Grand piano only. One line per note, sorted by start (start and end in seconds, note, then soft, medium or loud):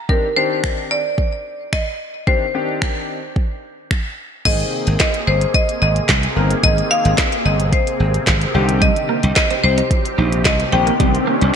0.09 0.25 D#3 medium
0.09 0.25 C4 medium
0.09 0.25 D4 medium
0.09 0.25 G4 medium
0.36 0.97 D#3 medium
0.36 0.98 C4 medium
0.36 0.98 D4 medium
0.36 0.98 G4 medium
2.27 2.43 D#3 medium
2.27 2.43 C4 medium
2.27 2.43 D4 medium
2.27 2.43 G4 medium
2.54 3.16 D#3 medium
2.54 3.16 C4 medium
2.54 3.16 D4 medium
2.54 3.16 G4 medium
4.45 5.07 D#3 medium
4.45 5.07 A#3 medium
4.45 5.07 C4 medium
4.45 5.07 G#4 medium
6.36 6.52 D#3 medium
6.36 6.52 A#3 medium
6.36 6.52 C4 medium
6.36 6.52 A#4 medium
6.63 7.25 D#3 medium
6.63 7.25 A#3 medium
6.63 7.25 C4 medium
6.63 7.25 G#4 medium
8.54 9.42 D3 medium
8.54 9.42 D#3 medium
8.54 9.42 C4 medium
8.54 9.42 G4 loud
10.72 10.89 D#3 medium
10.72 10.89 C4 medium
10.72 10.89 D4 medium
10.72 10.89 G4 medium
11.00 11.55 D#3 medium
11.00 11.55 C4 medium
11.00 11.55 D4 medium
11.00 11.55 G4 medium